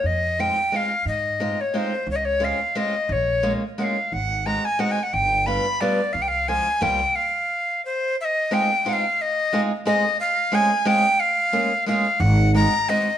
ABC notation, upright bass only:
X:1
M:3/4
L:1/8
Q:"Swing" 1/4=178
K:Ab
V:1 name="Upright bass" clef=bass
F,,4 z2 | A,,4 z2 | D,,4 z2 | B,,,4 z2 |
A,,,4 z2 | G,,,4 z2 | C,,4 C,,2 | z6 |
z6 | z6 | z6 | z6 |
A,,,4 z2 |]